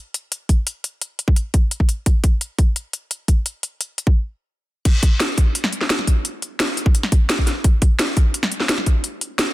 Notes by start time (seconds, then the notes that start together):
0.14 closed hi-hat
0.32 closed hi-hat
0.49 kick, closed hi-hat
0.67 closed hi-hat
0.84 closed hi-hat
1.02 closed hi-hat
1.19 closed hi-hat
1.28 kick
1.36 closed hi-hat
1.54 kick, closed hi-hat
1.71 closed hi-hat
1.80 kick
1.89 closed hi-hat
2.06 kick, closed hi-hat
2.24 kick, closed hi-hat
2.41 closed hi-hat
2.59 kick, closed hi-hat
2.76 closed hi-hat
2.93 closed hi-hat
3.11 closed hi-hat
3.28 kick, closed hi-hat
3.46 closed hi-hat
3.63 closed hi-hat
3.81 closed hi-hat
3.98 closed hi-hat
4.07 kick
4.85 kick, closed hi-hat, crash
5.03 kick, closed hi-hat
5.20 snare, closed hi-hat
5.38 kick, closed hi-hat
5.55 closed hi-hat
5.64 snare
5.73 closed hi-hat
5.81 snare
5.90 snare, closed hi-hat
5.99 snare
6.07 kick, closed hi-hat
6.25 closed hi-hat
6.42 closed hi-hat
6.60 snare, closed hi-hat
6.77 closed hi-hat
6.86 kick
6.95 closed hi-hat
7.03 snare
7.12 kick, closed hi-hat
7.30 snare, closed hi-hat
7.38 kick
7.47 snare, closed hi-hat
7.64 kick, closed hi-hat
7.82 kick, closed hi-hat
7.99 snare, closed hi-hat
8.17 kick, closed hi-hat
8.34 closed hi-hat
8.43 snare
8.52 closed hi-hat
8.60 snare
8.69 snare, closed hi-hat
8.78 snare
8.86 kick, closed hi-hat
9.04 closed hi-hat
9.21 closed hi-hat
9.39 snare, closed hi-hat